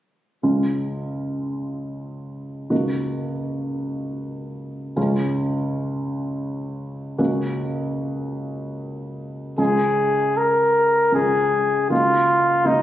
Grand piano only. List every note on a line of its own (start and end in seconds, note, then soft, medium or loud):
0.43 2.67 C#2 soft
0.43 2.66 G#3 soft
0.43 2.67 C#4 soft
0.43 2.66 F4 soft
2.70 4.92 C#2 soft
2.70 4.92 A#3 soft
2.70 4.92 D#4 soft
2.70 4.92 F#4 soft
4.96 7.15 C#2 soft
4.96 7.15 G#3 soft
4.96 7.15 C#4 soft
4.96 7.15 F4 soft
7.18 9.54 C#2 soft
7.18 9.54 A#3 soft
7.18 9.54 C#4 soft
7.18 9.54 F#4 soft
9.58 11.09 C#2 soft
9.58 11.09 G#3 soft
9.58 11.09 C#4 soft
9.58 11.09 F4 soft
11.12 11.87 C#2 soft
11.12 11.87 G#3 soft
11.12 11.87 C#4 soft
11.12 11.88 F4 soft
11.90 12.63 C#2 soft
11.90 12.63 A#3 soft
11.90 12.63 D#4 soft
11.90 12.63 F#4 soft
12.64 12.82 C#2 soft
12.64 12.82 A#3 soft
12.64 12.82 D#4 soft
12.64 12.82 F#4 soft